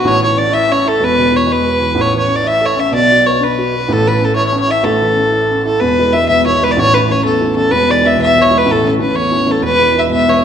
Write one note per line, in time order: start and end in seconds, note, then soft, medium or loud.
0.04 0.96 A1 medium
0.04 0.97 A2 medium
0.04 0.23 C#5 loud
0.21 0.36 E3 medium
0.21 0.39 C#5 medium
0.36 0.51 C#4 soft
0.36 0.55 D5 loud
0.52 0.69 E4 medium
0.52 0.73 E5 loud
0.69 0.84 C#4 medium
0.69 0.89 C#5 loud
0.85 0.99 E4 medium
0.85 1.05 A4 loud
1.00 1.92 E1 medium
1.00 1.93 E2 medium
1.00 1.38 B4 loud
1.18 1.33 B2 medium
1.32 1.47 E3 soft
1.36 1.54 C#5 medium
1.47 1.64 G#3 medium
1.52 2.02 B4 loud
1.65 1.80 B3 medium
1.80 1.95 E3 soft
1.95 2.87 A1 medium
1.95 2.89 A2 medium
2.01 2.16 C#5 loud
2.13 2.28 E3 medium
2.19 2.37 C#5 medium
2.27 2.43 C#4 medium
2.36 2.48 D5 medium
2.43 2.61 E4 medium
2.43 2.67 E5 loud
2.61 2.76 A4 medium
2.66 2.81 C#5 medium
2.76 2.91 C#4 medium
2.76 2.93 E5 loud
2.92 3.84 B1 medium
2.92 3.85 B2 medium
2.92 3.28 D5 loud
3.10 3.24 F#3 medium
3.25 3.39 B3 medium
3.25 3.45 C#5 medium
3.40 3.57 D4 medium
3.40 3.94 B4 medium
3.58 3.73 F#4 medium
3.74 3.88 B3 medium
3.88 4.80 A1 medium
3.88 4.81 A2 medium
3.88 4.09 A4 loud
4.06 4.20 E3 soft
4.06 4.26 B4 medium
4.21 4.36 C#4 soft
4.21 4.35 A4 medium
4.36 4.53 E4 medium
4.36 4.47 C#5 medium
4.47 4.58 C#5 medium
4.52 4.68 C#4 medium
4.60 4.72 C#5 loud
4.67 4.83 E4 soft
4.67 4.86 E5 medium
4.83 5.75 A1 medium
4.83 5.77 A2 medium
4.83 5.65 A4 loud
5.01 5.16 E3 medium
5.16 5.31 C#4 soft
5.32 5.49 E4 soft
5.51 5.65 C#4 medium
5.65 5.80 E4 soft
5.65 5.81 A4 loud
5.80 6.72 E1 medium
5.80 6.12 E2 medium
5.80 6.14 B4 loud
5.98 6.12 E3 medium
5.98 6.13 G#3 soft
5.98 6.13 B3 medium
6.13 6.39 E3 medium
6.13 6.40 G#3 soft
6.13 6.40 B3 medium
6.13 6.28 E5 loud
6.28 6.61 B1 medium
6.28 6.45 E5 loud
6.46 6.60 E3 soft
6.46 6.61 G#3 soft
6.46 6.61 B3 medium
6.46 6.65 C#5 loud
6.62 6.73 E3 soft
6.62 6.74 G#3 soft
6.62 6.74 B3 soft
6.62 6.73 B4 loud
6.71 6.80 D5 medium
6.77 7.68 A1 medium
6.77 7.08 A2 medium
6.77 6.96 C#5 loud
6.93 7.07 E3 medium
6.93 7.08 A3 soft
6.93 7.08 C#4 medium
6.93 7.13 B4 loud
7.09 7.35 E3 soft
7.09 7.35 A3 soft
7.09 7.35 C#4 medium
7.09 7.24 C#5 medium
7.24 7.55 E2 medium
7.24 7.55 A4 medium
7.41 7.54 E3 medium
7.41 7.55 A3 soft
7.41 7.55 C#4 medium
7.56 7.68 E3 medium
7.56 7.69 A3 soft
7.56 7.69 C#4 medium
7.56 7.72 A4 loud
7.71 8.63 E1 medium
7.71 8.03 E2 medium
7.71 7.92 B4 loud
7.89 8.01 E3 medium
7.89 8.02 G#3 soft
7.89 8.02 B3 medium
7.89 8.07 D5 loud
8.03 8.29 E3 soft
8.03 8.30 G#3 soft
8.03 8.30 B3 soft
8.03 8.20 E5 loud
8.18 8.50 B1 medium
8.22 8.43 E5 loud
8.35 8.49 E3 medium
8.35 8.49 G#3 soft
8.35 8.49 B3 medium
8.42 8.59 C#5 loud
8.50 8.63 E3 soft
8.50 8.63 G#3 soft
8.50 8.63 B3 medium
8.58 8.73 B4 loud
8.65 9.58 A1 medium
8.65 8.98 A2 medium
8.71 8.87 A4 loud
8.83 8.97 E3 soft
8.83 8.98 A3 soft
8.83 8.98 C#4 medium
8.88 8.94 A4 medium
8.99 9.25 E3 soft
8.99 9.26 A3 soft
8.99 9.26 C#4 medium
8.99 9.17 B4 medium
9.14 9.46 E2 medium
9.14 9.53 C#5 loud
9.31 9.45 E3 soft
9.31 9.45 A3 soft
9.31 9.45 C#4 medium
9.46 9.59 E3 medium
9.46 9.59 A3 soft
9.46 9.59 C#4 medium
9.51 9.64 A4 medium
9.62 10.45 E1 medium
9.62 9.94 E2 medium
9.62 10.00 B4 loud
9.79 9.93 E3 soft
9.79 9.93 G#3 soft
9.79 9.93 B3 soft
9.94 10.21 E3 soft
9.94 10.21 G#3 soft
9.94 10.21 B3 medium
9.99 10.11 E5 medium
10.10 10.42 B1 medium
10.10 10.30 E5 loud
10.28 10.41 E3 soft
10.28 10.41 G#3 soft
10.28 10.42 B3 medium
10.28 10.45 C#5 loud